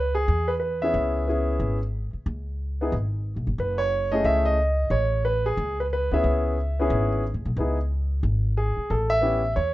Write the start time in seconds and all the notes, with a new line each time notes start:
Already playing: C#2 B4
0.15 G#4
0.28 E2
0.48 B4
0.60 B4
0.82 B3 C#4 E4 G#4 E5
0.94 C#2
1.27 B3 C#4 E4 G#4
1.60 G#1
2.13 muted upright bass stroke
2.26 C#2
2.81 B3 D#4 E4 G#4
2.92 G#1
3.36 B1
3.47 G1
3.58 F#1 B4
3.78 C#5
4.12 A3 C#4 E4 G#4 D#5
4.24 C#2 E5
4.45 D#5
4.90 A1 C#5
5.25 B4
5.46 G#4
5.57 C#2
5.80 B4
5.93 B4
6.11 D2 B3 C#4 E4 G#4 E5
6.24 C#2
6.79 B3 C#4 E4 G#4
6.90 G#1
7.34 C#2
7.45 B1
7.57 C#2 B3 D#4 E4 G#4
8.23 G#1
8.57 G#4
8.77 muted upright bass stroke
8.90 A1 A4
9.10 E5
9.21 B3 C#4 E4 G4
9.56 E2 C#5